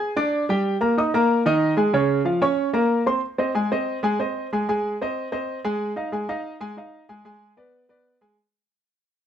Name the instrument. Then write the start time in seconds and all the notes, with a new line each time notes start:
grand piano
Already playing: G#4 G#5 G#6
0.16 D4 D5 D6
0.49 G3 G4 G5
0.81 A#3 A#4 A#5
0.98 D#4 D#5 D#6
1.14 A#3 A#4 A#5
1.46 D#3 D#4 D#5
1.77 G#3 G#4 G#5
1.93 C#3 C#4 C#5
2.25 F3 F4 F5
2.42 C#4 C#5 C#6
2.73 A#3 A#4 A#5
3.06 C4 C5 C6
3.38 C4 C5 D#5
3.55 G#3 G#4 G#5
3.72 C4 C5 D#5
4.03 G#3 G#4 G#5
4.19 C4 C5 D#5
4.53 G#3 G#4 G#5
4.69 G#3 G#4 G#5
5.02 C4 C5 D#5
5.32 C4 C5 D#5
5.65 G#3 G#4 G#5
5.96 D#4 D#5 F5
6.12 G#3 G#4 G#5
6.29 D#4 D#5 F5
6.61 G#3 G#4 G#5
6.77 D#4 D#5 F5
7.09 G#3 G#4 G#5
7.25 G#3 G#4 G#5
7.57 B3 B4 D5
7.89 B3 B4 D5
8.21 G#3 G#4 G#5